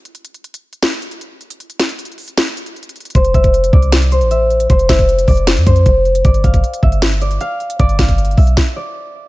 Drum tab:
HH |x-----x-----x-----x-----x-----x-----------x-----x-----x-----x-----x-----x-----------x-----x-----|x-----x-----x-----x-----x---x---x---o-----x-----x-----x-----x-----x-----x---x---x---x--x--x--x--|x-----x-----x-----x-----x-----x-----------x-----x-----x-----x-----x-----x-----------x-----x-----|x-----x-----x-----x-----x-----x-----o-----x-----x-----x-----x-----x-----x-----------x-----x-----|
SD |------------------------------------------------o-----------------------------------------------|------------o-----------------------------------o-----------------------------------------------|------------------------------------------------o-----------------------------------------------|------------o-----------------------------------o-----------------------------------------------|
BD |------------------------------------------------------------------------------------------------|------------------------------------------------------------------------------------------------|o-----------o-----o-----------------o-----------------------------------------------------------|o-----------o-----o-----------------o-----------------------o-----------o-----------------------|

HH |x-----x-----x-----x-----x-----x-----------x-----x-----x-----x-----x-----x-----------x-----x-----|x-----x-----x-----x-----x---x---x---o-----x-----------------------------------------------------|
SD |------------------------------------------------o-----------------------------------------------|------------o-----------------------------------o-----------------------------------------------|
BD |o-----------o-----o-----------------o-----------------------------------------------------------|o-----------o-----o-----------------o-----------o-----------------------------------------------|